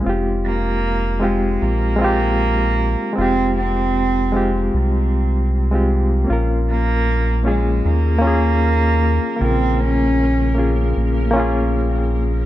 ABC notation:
X:1
M:4/4
L:1/16
Q:"Swing 16ths" 1/4=77
K:Bbdor
V:1 name="Reed electric piano"
[A,CFG]6 [A,CFG]4 [A,CFG]6 | [A,CFG]6 [A,CFG]4 z3 [A,CFG]3 | [B,DFB]6 [B,DFA]4 [B,DFA]6 | [D,B,FB]6 [B,DFA]4 [B,DFA]6 |]
V:2 name="Cello"
z2 B,4 A,2 B,8 | C2 C6 z8 | z2 B,4 A,2 B,8 | C2 D6 z8 |]
V:3 name="Synth texture"
z16 | z16 | B,16- | B,16 |]
V:4 name="Analog synth bass" clef=bass
F,,,8 B,,,6 z2 | F,,,8 C,,8 | B,,,8 E,,6 z2 | B,,,8 B,,,8 |]